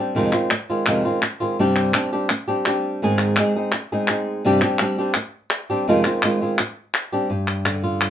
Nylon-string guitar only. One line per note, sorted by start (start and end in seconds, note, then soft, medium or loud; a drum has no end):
0.00 0.15 G3 soft
0.00 0.15 C4 soft
0.00 0.15 D4 soft
0.00 0.14 G4 soft
0.15 0.32 F2 medium
0.15 0.33 C3 medium
0.15 0.33 D#3 medium
0.15 0.33 G#3 medium
0.15 0.33 C4 medium
0.15 0.31 F4 medium
0.33 0.50 D#3 soft
0.33 0.50 G#3 soft
0.33 0.50 C4 soft
0.33 0.50 F4 soft
0.51 muted nylon-string guitar stroke medium
0.70 0.87 D#3 soft
0.70 0.87 G#3 soft
0.70 0.87 C4 soft
0.70 0.86 F4 soft
0.87 1.04 F2 medium
0.87 1.04 C3 medium
0.87 1.04 D#3 medium
0.87 1.05 G#3 medium
0.87 1.04 C4 medium
0.87 1.04 F4 medium
1.05 1.21 D#3 soft
1.05 1.22 G#3 soft
1.05 1.21 C4 soft
1.05 1.22 F4 soft
1.22 muted nylon-string guitar stroke medium
1.40 1.58 D#3 soft
1.40 1.58 G#3 soft
1.40 1.58 C4 soft
1.40 1.57 F4 medium
1.59 1.94 G2 medium
1.59 1.94 C3 medium
1.59 1.93 G3 medium
1.59 1.94 C4 medium
1.59 1.94 D4 medium
1.59 1.95 G4 medium
1.94 2.11 G3 medium
1.94 2.12 C4 medium
1.94 2.12 D4 medium
1.94 2.11 G4 medium
2.13 2.29 G3 soft
2.13 2.30 C4 soft
2.13 2.30 D4 soft
2.13 2.29 G4 soft
2.30 muted nylon-string guitar stroke medium
2.48 2.66 G3 soft
2.48 2.65 C4 soft
2.48 2.65 D4 soft
2.48 2.65 G4 medium
2.67 3.02 G3 soft
2.67 3.02 C4 soft
2.67 3.01 D4 soft
2.67 3.01 G4 soft
3.02 3.37 G#2 medium
3.02 3.37 D#3 medium
3.02 3.37 G#3 medium
3.02 3.37 C4 medium
3.02 3.38 D#4 medium
3.02 3.38 G#4 medium
3.39 3.55 G#3 medium
3.39 3.55 C4 medium
3.39 3.55 D#4 medium
3.39 3.55 G#4 medium
3.56 3.73 G#3 soft
3.56 3.73 C4 soft
3.56 3.73 D#4 soft
3.56 3.73 G#4 soft
3.74 muted nylon-string guitar stroke medium
3.92 4.09 G#3 soft
3.92 4.09 C4 soft
3.92 4.09 D#4 soft
3.92 4.08 G#4 medium
4.09 4.45 G#3 soft
4.09 4.44 C4 soft
4.09 4.44 D#4 soft
4.09 4.44 G#4 medium
4.45 4.62 G2 medium
4.45 4.62 C3 medium
4.45 4.62 G3 medium
4.45 4.62 C4 medium
4.45 4.62 D4 medium
4.45 4.62 G4 medium
4.63 4.79 G3 soft
4.63 4.80 C4 soft
4.63 4.80 D4 soft
4.63 4.80 G4 soft
4.80 4.97 G3 medium
4.80 4.98 C4 medium
4.80 4.98 D4 medium
4.80 4.97 G4 medium
4.99 5.15 G3 soft
4.99 5.15 C4 soft
4.99 5.16 D4 soft
4.99 5.15 G4 medium
5.16 muted nylon-string guitar stroke medium
5.70 5.88 G3 soft
5.70 5.87 C4 soft
5.70 5.87 D4 medium
5.70 5.87 G4 medium
5.88 6.04 F2 medium
5.88 6.05 C3 medium
5.88 6.05 D#3 medium
5.88 6.05 G#3 medium
5.88 6.05 C4 medium
5.88 6.04 F4 medium
6.06 6.22 D#3 soft
6.06 6.23 G#3 soft
6.06 6.23 C4 soft
6.06 6.22 F4 soft
6.23 6.40 D#3 soft
6.23 6.41 G#3 medium
6.23 6.41 C4 medium
6.23 6.40 F4 medium
6.41 6.59 D#3 soft
6.41 6.59 G#3 soft
6.41 6.58 C4 soft
6.41 6.58 F4 soft
6.60 muted nylon-string guitar stroke medium
7.12 7.30 G3 soft
7.12 7.30 C4 soft
7.12 7.30 D4 soft
7.12 7.29 G4 soft
7.30 8.10 G2 medium
7.30 7.83 G4 soft
7.65 8.10 D3 medium
7.84 8.10 F4 medium
8.01 8.10 G3 soft